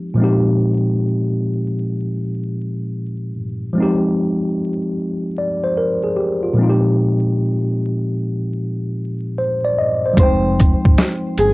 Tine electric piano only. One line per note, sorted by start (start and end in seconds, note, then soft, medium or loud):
0.00 0.11 F3 medium
0.00 0.13 G#3 medium
0.00 0.14 C4 medium
0.00 0.15 D#4 medium
0.00 0.16 G4 medium
0.14 3.32 A#2 medium
0.14 3.33 F3 medium
0.14 3.34 G#3 medium
0.20 3.35 C4 medium
0.20 3.36 D#4 medium
0.20 3.37 G4 medium
3.73 6.51 F3 medium
3.73 6.52 G#3 medium
3.78 6.54 C4 medium
3.78 6.55 D#4 medium
3.82 5.37 G4 medium
5.38 5.62 D5 medium
5.64 5.77 C5 medium
5.77 6.02 A#4 medium
6.04 6.17 G#4 medium
6.16 6.42 G4 medium
6.43 6.62 F4 soft
6.53 9.71 A#2 medium
6.53 9.72 F3 medium
6.53 9.73 G#3 medium
6.59 9.74 C4 medium
6.59 9.75 D#4 medium
6.59 6.68 F4 medium
6.69 9.79 G4 medium
9.38 9.63 C5 medium
9.64 9.77 D5 medium
9.78 10.03 D#5 medium
10.05 10.42 C5 soft
10.13 11.54 F3 medium
10.13 10.25 G3 soft
10.18 11.54 C4 medium
10.18 11.54 D#4 medium
10.22 11.54 G#3 medium
10.22 11.54 G5 medium